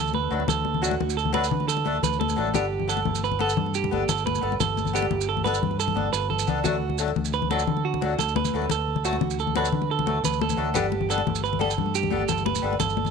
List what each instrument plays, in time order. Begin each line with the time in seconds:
Already playing: fingered electric bass D2, clean electric guitar A4
0.07 maracas
0.14 clean electric guitar B4, high conga
0.30 fingered electric bass D2, steel-string acoustic guitar F#3 A3 D4, muted steel-string acoustic guitar stroke
0.40 high conga
0.48 fingered electric bass D2, clean electric guitar A4, muted conga, low conga, maracas
0.65 high conga, low conga
0.74 low conga
0.82 steel-string acoustic guitar F#3 A3 D4 A4, clean electric guitar F#4, maracas
0.91 muted conga
1.01 fingered electric bass D2, high conga, low conga
1.10 maracas
1.17 clean electric guitar A4, maracas
1.25 high conga, low conga
1.33 steel-string acoustic guitar F#3 A3 D4 A4, clean electric guitar B4, muted conga
1.44 maracas
1.51 fingered electric bass D3, low conga
1.60 high conga
1.68 clean electric guitar A4, maracas
1.77 muted conga
1.85 fingered electric bass D2, steel-string acoustic guitar A3 D4 A4, muted steel-string acoustic guitar stroke, high conga
1.94 low conga
2.03 fingered electric bass D2, clean electric guitar B4, low conga, maracas
2.13 maracas
2.20 clean electric guitar A4, muted conga, high conga
2.28 low conga, maracas
2.36 fingered electric bass A1, steel-string acoustic guitar F#3 A3 D4 A4
2.47 high conga
2.54 fingered electric bass G1, steel-string acoustic guitar B3 D4 A4, clean electric guitar G4, muted conga, low conga, maracas
2.71 low conga
2.80 low conga
2.88 steel-string acoustic guitar B3 D4 A4, clean electric guitar A4, maracas
2.97 muted conga
3.05 fingered electric bass G1, high conga, low conga
3.15 maracas
3.24 clean electric guitar B4, maracas
3.32 high conga, low conga
3.39 steel-string acoustic guitar B3 A4, clean electric guitar A4, muted conga
3.49 maracas
3.57 fingered electric bass G2, low conga
3.66 high conga
3.74 clean electric guitar G4, maracas
3.84 muted conga, low conga
3.91 fingered electric bass G1, steel-string acoustic guitar B3 D4 A4, high conga
4.01 low conga
4.09 fingered electric bass G1, clean electric guitar A4, low conga, maracas
4.17 maracas
4.26 clean electric guitar B4, muted conga, high conga
4.35 maracas
4.41 fingered electric bass G1, steel-string acoustic guitar B3 A4, muted steel-string acoustic guitar stroke
4.52 high conga
4.60 fingered electric bass G1, clean electric guitar A4, muted conga, low conga, maracas
4.77 high conga, low conga, maracas
4.85 low conga, maracas
4.93 steel-string acoustic guitar B3 D4 A4, clean electric guitar G4, maracas
5.02 muted conga
5.11 fingered electric bass G1, high conga, low conga
5.21 maracas
5.29 clean electric guitar A4
5.37 high conga, low conga
5.44 steel-string acoustic guitar B3 D4 A4, clean electric guitar B4, muted conga, maracas
5.54 maracas
5.62 fingered electric bass G2, low conga
5.71 high conga
5.79 clean electric guitar A4, low conga, maracas
5.88 muted conga, low conga
5.94 fingered electric bass G1, steel-string acoustic guitar B3 D4, muted steel-string acoustic guitar stroke, high conga
6.13 fingered electric bass G1, clean electric guitar B4, high conga, maracas
6.30 clean electric guitar A4, low conga
6.39 maracas
6.47 fingered electric bass C#2, steel-string acoustic guitar B3 D4 A4, low conga, maracas
6.64 fingered electric bass D2, steel-string acoustic guitar F#3 A3 D4 A4, clean electric guitar F#4, muted conga, low conga, maracas
6.82 low conga
6.90 low conga
6.98 steel-string acoustic guitar F#3 A3 D4 A4, maracas
7.08 muted conga
7.16 fingered electric bass D2, high conga, low conga
7.25 maracas
7.33 clean electric guitar B4, maracas
7.42 high conga, low conga
7.51 steel-string acoustic guitar F#3 A3 D4 A4, clean electric guitar A4, muted conga
7.59 maracas
7.67 fingered electric bass D3, low conga
7.77 high conga
7.85 clean electric guitar F#4
7.94 muted conga, low conga
8.01 fingered electric bass D2, steel-string acoustic guitar F#3 A3 D4 A4, high conga
8.10 low conga
8.19 fingered electric bass D2, clean electric guitar A4, low conga, maracas
8.28 maracas
8.36 clean electric guitar B4, muted conga, high conga
8.45 low conga, maracas
8.54 fingered electric bass D2, steel-string acoustic guitar F#3 A3 D4 A4
8.62 high conga
8.70 fingered electric bass D2, clean electric guitar A4, muted conga, low conga, maracas
8.88 low conga
8.96 low conga
9.04 steel-string acoustic guitar F#3 A3 A4, clean electric guitar F#4, maracas
9.13 muted conga
9.21 fingered electric bass D2, high conga, low conga
9.30 maracas
9.39 clean electric guitar A4, maracas
9.47 high conga, low conga
9.55 steel-string acoustic guitar F#3 A3 D4 A4, clean electric guitar B4, muted conga
9.65 maracas
9.72 fingered electric bass D3, low conga
9.82 high conga
9.91 clean electric guitar A4
9.99 muted conga, low conga
10.06 fingered electric bass D2, steel-string acoustic guitar F#3 A3 A4, high conga
10.16 low conga
10.23 fingered electric bass D2, clean electric guitar B4, low conga, maracas
10.33 maracas
10.41 clean electric guitar A4, muted conga, high conga
10.49 low conga, maracas
10.57 fingered electric bass D2, steel-string acoustic guitar F#3 A3 D4 A4
10.74 fingered electric bass G1, steel-string acoustic guitar G3 B3 D4 A4, clean electric guitar G4, muted conga, low conga, maracas
10.92 high conga, low conga
11.01 low conga
11.09 steel-string acoustic guitar G3 B3 D4 A4, clean electric guitar A4, maracas
11.18 muted conga
11.27 fingered electric bass G1, high conga, low conga
11.35 maracas
11.44 clean electric guitar B4, maracas
11.53 high conga, low conga
11.59 steel-string acoustic guitar G3 B3 A4, clean electric guitar A4, muted steel-string acoustic guitar stroke, muted conga
11.71 maracas
11.78 fingered electric bass G2, low conga
11.86 high conga
11.95 clean electric guitar G4, maracas
12.03 muted conga, low conga
12.10 fingered electric bass G1, steel-string acoustic guitar G3 B3 D4 A4, high conga
12.20 low conga
12.28 fingered electric bass G1, clean electric guitar A4, low conga, maracas
12.38 maracas
12.46 clean electric guitar B4, muted conga, high conga
12.55 low conga, maracas
12.62 fingered electric bass G1, steel-string acoustic guitar G3 B3 D4 A4
12.73 high conga
12.80 fingered electric bass G1, clean electric guitar A4, muted conga, low conga, maracas
12.90 maracas
12.97 high conga
13.05 low conga, maracas